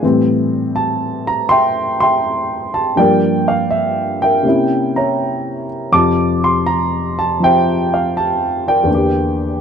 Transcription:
0.02 2.97 A2 medium
0.02 2.97 E3 medium
0.02 2.98 G3 medium
0.02 2.98 C4 medium
0.76 1.28 A5 medium
1.27 1.51 A#5 medium
1.49 2.01 E5 medium
1.49 2.01 G5 medium
1.49 1.99 C6 loud
2.00 2.94 E5 medium
2.00 2.95 G5 medium
2.00 2.70 C6 medium
2.74 2.79 A5 medium
2.96 4.44 G2 medium
2.96 4.45 F3 soft
2.96 4.46 G3 soft
2.96 4.43 A#3 medium
2.96 4.22 A#4 medium
2.96 4.42 D5 medium
2.96 3.44 G5 medium
3.48 3.53 F5 medium
3.71 4.22 E5 medium
4.22 5.66 A#4 medium
4.22 4.95 E5 medium
4.22 4.92 G5 medium
4.43 5.91 C3 medium
4.43 5.92 A#3 soft
4.43 5.93 C#4 soft
4.48 5.94 E4 medium
4.96 5.89 C#5 medium
4.96 5.89 E5 soft
4.96 5.65 A#5 medium
5.92 8.87 F2 soft
5.92 8.88 C3 soft
5.92 7.17 A5 medium
5.92 6.39 D6 medium
5.98 7.42 F4 soft
6.44 6.67 C6 medium
6.66 7.18 A#5 medium
7.19 7.42 A5 medium
7.40 8.87 F3 soft
7.40 8.88 C4 soft
7.40 8.89 F4 soft
7.40 8.85 C5 medium
7.40 8.85 E5 medium
7.44 7.89 G5 medium
7.94 8.14 F5 medium
8.17 8.28 A5 medium
8.68 9.61 A#4 soft
8.68 9.61 D5 soft
8.68 9.61 G5 medium
8.83 9.61 E2 medium
8.83 9.61 D3 soft
8.90 9.61 A#3 medium
8.90 9.61 G4 medium

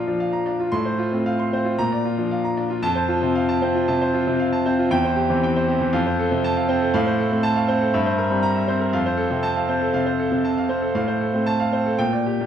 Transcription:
0.00 0.75 A#2 medium
0.00 0.07 F3 medium
0.00 0.07 D4 medium
0.00 0.60 F4 medium
0.00 0.46 D5 medium
0.00 0.20 F5 medium
0.00 0.33 A#5 medium
0.07 0.27 F3 medium
0.07 0.28 D4 medium
0.20 0.41 F5 medium
0.33 0.54 A#5 medium
0.46 0.67 D4 medium
0.46 0.67 D5 medium
0.60 0.72 F4 medium
0.72 1.75 A2 medium
0.72 0.93 C6 medium
0.85 1.06 C5 medium
0.98 1.20 F4 medium
1.12 1.33 A3 medium
1.12 1.33 C4 medium
1.26 1.47 F5 medium
1.39 1.60 C6 medium
1.53 1.73 C4 medium
1.53 1.73 C5 medium
1.65 1.78 F4 medium
1.78 2.80 A#2 medium
1.78 1.99 A#5 medium
1.92 2.13 D5 medium
2.05 2.26 F4 medium
2.17 2.39 F3 medium
2.17 2.39 D4 medium
2.31 2.52 F5 medium
2.44 2.65 A#5 medium
2.57 2.78 D4 medium
2.57 2.78 D5 medium
2.70 2.83 F4 medium
2.82 3.85 F2 medium
2.82 3.04 A5 loud
2.95 3.17 C5 medium
3.08 3.30 F4 medium
3.21 3.43 C3 medium
3.21 3.43 C4 medium
3.35 3.57 F5 medium
3.49 3.70 A5 medium
3.62 3.83 C4 medium
3.62 3.83 C5 medium
3.75 3.96 F4 medium
3.88 4.09 C3 medium
3.88 4.09 A5 medium
4.02 4.22 C5 medium
4.14 4.35 F4 medium
4.27 4.48 C3 medium
4.27 4.48 C4 medium
4.40 4.61 F5 medium
4.53 4.73 A5 medium
4.66 4.87 C4 medium
4.66 4.86 C5 medium
4.79 4.92 F4 medium
4.91 5.90 E2 medium
4.91 5.12 G5 loud
5.05 5.25 C5 medium
5.16 5.37 G4 medium
5.30 5.50 E3 medium
5.30 5.51 C4 medium
5.43 5.63 G5 medium
5.56 5.76 C5 medium
5.68 5.88 C4 medium
5.68 5.88 G4 medium
5.81 5.93 E3 medium
5.93 6.90 F2 medium
5.93 6.13 F5 medium
6.06 6.26 C5 medium
6.19 6.39 A4 medium
6.31 6.51 C3 medium
6.31 6.51 C4 medium
6.44 6.64 A5 medium
6.56 6.76 F5 medium
6.69 6.89 C4 medium
6.69 6.89 C5 medium
6.81 6.94 A4 medium
6.94 7.91 A2 loud
6.94 7.14 F5 medium
7.06 7.27 C5 medium
7.18 7.39 A4 medium
7.31 7.51 A3 medium
7.31 7.52 C4 medium
7.43 7.64 A5 loud
7.56 7.76 F5 medium
7.68 7.89 C4 medium
7.68 7.89 C5 medium
7.81 7.94 A4 medium
7.94 8.91 G2 medium
7.94 8.14 E5 medium
8.06 8.26 C5 medium
8.18 8.38 A#4 medium
8.30 8.51 G3 medium
8.30 8.51 C4 medium
8.43 8.63 A#5 medium
8.55 8.76 E5 medium
8.68 8.88 C4 medium
8.68 8.88 C5 medium
8.80 8.93 A#4 medium
8.93 9.91 F2 medium
8.93 9.14 F5 medium
9.06 9.26 C5 medium
9.17 9.38 A4 medium
9.30 9.51 C3 medium
9.30 9.51 C4 medium
9.43 9.64 A5 medium
9.56 9.77 F5 medium
9.69 9.89 C4 medium
9.69 9.89 C5 medium
9.81 10.02 A4 medium
9.94 10.14 C3 medium
9.94 10.14 F5 medium
10.06 10.27 C5 medium
10.19 10.40 A4 medium
10.32 10.52 C3 medium
10.32 10.52 C4 medium
10.44 10.65 A5 medium
10.58 10.78 F5 medium
10.69 10.90 C4 medium
10.69 10.90 C5 medium
10.82 10.95 A4 medium
10.95 11.96 A2 medium
10.95 11.16 F5 medium
11.08 11.28 C5 medium
11.21 11.42 A4 medium
11.34 11.55 A3 medium
11.34 11.55 C4 medium
11.46 11.67 A5 medium
11.60 11.81 F5 medium
11.73 11.94 C4 medium
11.73 11.94 C5 medium
11.86 12.00 A4 medium
11.98 12.46 A#2 medium
11.98 12.21 G5 medium
12.13 12.35 D5 medium
12.26 12.46 G4 medium
12.40 12.46 A#3 medium
12.40 12.46 D4 soft

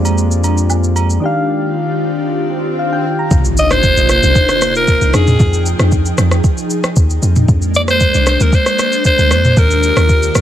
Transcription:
0.00 1.18 F2 medium
0.00 0.91 F3 medium
0.00 1.20 G#3 medium
0.00 1.20 A#3 medium
0.00 1.20 D4 medium
0.00 0.92 F4 medium
0.00 0.92 G4 medium
0.00 0.93 G#4 medium
0.00 0.93 C5 medium
0.00 0.94 D5 medium
0.05 high agogo medium
0.05 shaker medium
0.18 shaker medium
0.31 shaker medium
0.44 high agogo medium
0.44 shaker medium
0.58 shaker soft
0.70 low woodblock medium
0.70 shaker medium
0.84 shaker soft
0.96 high agogo medium
0.96 shaker medium
1.10 shaker soft
1.20 3.26 D#3 medium
1.20 3.29 D#3 medium
1.20 3.27 D4 medium
1.20 3.29 D4 medium
1.20 3.29 F4 medium
1.20 3.29 G4 medium
1.20 3.28 G4 medium
1.20 swell medium
1.25 2.52 F5 medium
2.79 2.92 F5 medium
2.93 3.17 G5 medium
3.19 3.44 A#5 medium
3.31 3.94 C2 loud
3.31 5.12 C3 medium
3.31 5.12 A#3 medium
3.31 5.12 D4 medium
3.31 7.18 D#4 medium
3.31 5.12 F4 medium
3.31 kick loud
3.31 impact medium
3.31 shaker medium
3.45 shaker medium
3.57 3.74 D#5 loud
3.57 shaker medium
3.71 4.10 C5 loud
3.71 cross-stick loud
3.71 shaker medium
3.83 kick loud
3.83 shaker medium
3.97 4.20 A#1 medium
3.97 shaker medium
4.09 4.72 C5 loud
4.09 cross-stick loud
4.09 shaker loud
4.23 4.34 C2 loud
4.23 shaker medium
4.35 kick loud
4.35 shaker medium
4.49 cross-stick medium
4.49 shaker medium
4.62 cross-stick loud
4.62 shaker loud
4.75 5.17 A#4 loud
4.75 shaker medium
4.88 kick loud
4.88 shaker medium
5.01 5.12 C2 medium
5.01 shaker medium
5.14 5.37 F2 loud
5.14 7.20 F3 medium
5.14 7.20 G#4 medium
5.14 5.67 G#4 medium
5.14 7.20 G5 medium
5.14 cross-stick loud
5.14 shaker medium
5.27 mid tom loud
5.27 shaker medium
5.40 5.74 F2 loud
5.40 kick loud
5.40 shaker medium
5.53 shaker medium
5.66 shaker medium
5.79 6.13 F2 loud
5.79 cross-stick loud
5.79 shaker medium
5.92 kick loud
5.92 shaker medium
6.06 shaker medium
6.18 6.41 F2 loud
6.18 cross-stick loud
6.18 shaker loud
6.31 cross-stick medium
6.31 shaker medium
6.44 kick loud
6.44 shaker medium
6.58 shaker medium
6.70 shaker loud
6.84 cross-stick loud
6.84 shaker medium
6.96 7.19 D#2 loud
6.96 kick loud
6.96 shaker medium
7.10 shaker medium
7.22 7.45 F2 loud
7.22 9.55 G#3 medium
7.22 9.55 A#3 medium
7.22 10.41 D4 medium
7.22 shaker medium
7.36 mid tom loud
7.36 shaker soft
7.48 8.11 F2 loud
7.48 kick loud
7.48 shaker medium
7.62 shaker medium
7.75 7.82 D5 loud
7.75 shaker medium
7.88 8.25 C5 loud
7.88 cross-stick loud
7.88 shaker medium
8.00 kick medium
8.00 shaker medium
8.14 8.37 C2 medium
8.14 shaker medium
8.27 8.43 C5 loud
8.27 cross-stick loud
8.27 shaker loud
8.40 8.51 D2 loud
8.40 8.56 A#4 medium
8.40 shaker medium
8.53 9.06 C5 loud
8.53 kick loud
8.53 shaker medium
8.66 cross-stick medium
8.66 shaker medium
8.79 cross-stick loud
8.79 shaker loud
8.92 shaker medium
9.05 9.60 C5 loud
9.05 kick medium
9.05 shaker medium
9.19 9.33 D2 medium
9.19 shaker medium
9.31 9.54 F2 loud
9.31 cross-stick loud
9.31 shaker medium
9.45 mid tom loud
9.45 shaker medium
9.57 9.92 D#2 loud
9.57 10.41 D#3 medium
9.57 10.41 F4 medium
9.57 10.41 G4 medium
9.57 10.41 A#4 medium
9.57 kick loud
9.57 shaker medium
9.71 shaker medium
9.83 shaker medium
9.97 10.30 D#2 loud
9.97 cross-stick loud
9.97 shaker medium
10.09 kick medium
10.09 shaker medium
10.23 shaker medium
10.35 10.41 D#2 loud
10.35 cross-stick loud
10.35 shaker loud

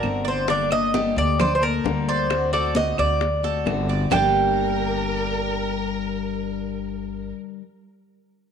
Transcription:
0.00 1.11 G1 medium
0.00 0.46 D3 medium
0.00 0.48 A3 medium
0.00 0.48 C4 medium
0.00 0.28 A#4 medium
0.00 0.28 D5 loud
0.00 0.24 A5 medium
0.00 high conga soft
0.00 claves medium
0.04 0.48 F#4 medium
0.25 0.50 C5 medium
0.25 0.47 D5 medium
0.25 high conga soft
0.48 0.70 D3 medium
0.48 0.70 G3 medium
0.48 0.71 A#3 medium
0.48 0.92 D4 medium
0.48 0.70 D4 medium
0.48 0.70 A4 medium
0.48 0.71 D5 medium
0.48 high bongo medium
0.48 high conga soft
0.71 0.94 A#3 soft
0.71 0.94 D4 medium
0.71 0.93 A4 medium
0.71 1.18 D#5 loud
0.71 high bongo soft
0.71 high conga soft
0.71 claves medium
0.94 1.16 D3 medium
0.94 1.16 G3 medium
0.94 1.16 A#3 medium
0.94 1.16 D4 medium
0.94 1.38 G4 medium
0.94 1.15 A4 medium
0.94 high bongo medium
0.94 high conga loud
1.16 1.81 D2 loud
1.16 1.38 A#3 soft
1.16 1.39 D4 soft
1.16 1.38 A4 medium
1.16 1.40 D5 loud
1.16 high bongo soft
1.16 high conga soft
1.39 1.54 C5 medium
1.39 1.61 D5 medium
1.39 muted steel-string acoustic guitar stroke medium
1.39 high bongo medium
1.39 high conga soft
1.39 low conga medium
1.39 claves medium
1.55 1.62 C5 medium
1.61 1.84 A#3 soft
1.61 1.84 D4 soft
1.61 1.84 A4 medium
1.61 2.09 A#4 medium
1.61 2.07 A5 medium
1.61 high bongo soft
1.61 high conga soft
1.84 2.92 D2 medium
1.84 2.29 D3 medium
1.84 2.29 G3 medium
1.84 2.29 A#3 medium
1.84 2.30 D4 medium
1.84 2.30 A4 medium
1.84 high bongo soft
1.84 low bongo medium
1.84 high conga soft
2.08 2.50 C5 medium
2.08 2.52 D5 medium
2.08 high conga soft
2.30 2.52 D3 medium
2.30 2.53 A3 medium
2.30 2.52 C4 medium
2.30 2.52 F#4 medium
2.30 high bongo medium
2.30 high conga soft
2.30 claves medium
2.53 2.75 A3 soft
2.53 2.75 C4 medium
2.53 2.75 F#4 medium
2.53 2.75 A4 medium
2.53 2.76 D5 medium
2.53 high bongo soft
2.53 high conga soft
2.75 2.98 D3 medium
2.75 2.98 A3 medium
2.75 2.98 C4 medium
2.75 2.98 F#4 medium
2.75 2.97 F#4 medium
2.75 2.97 D#5 loud
2.75 high bongo medium
2.75 high conga medium
2.98 3.63 D2 medium
2.98 3.21 A3 soft
2.98 3.21 C4 soft
2.98 3.20 F#4 medium
2.98 3.43 D5 medium
2.98 3.86 D5 medium
2.98 high bongo soft
2.98 high conga soft
2.98 claves medium
3.21 muted steel-string acoustic guitar stroke medium
3.21 high bongo medium
3.21 high conga soft
3.43 3.65 A3 soft
3.43 3.66 C4 soft
3.43 3.66 F#4 medium
3.43 3.88 A4 medium
3.43 high bongo soft
3.43 high conga soft
3.65 4.06 G1 loud
3.65 4.10 D3 medium
3.65 4.11 A3 medium
3.65 4.11 C4 medium
3.65 4.11 F#4 medium
3.65 high bongo soft
3.65 low bongo medium
3.65 high conga soft
3.65 claves medium
3.88 4.11 D5 medium
3.88 high conga soft
4.10 7.30 G1 medium
4.10 7.60 G2 medium
4.10 7.61 D3 medium
4.10 7.30 G3 medium
4.10 7.61 G3 medium
4.10 7.62 A#3 medium
4.10 7.30 D4 medium
4.10 7.62 D4 medium
4.10 7.31 G4 medium
4.10 7.31 A#4 loud
4.10 7.31 G5 medium
4.10 low bongo loud
4.10 low conga loud
4.10 claves loud

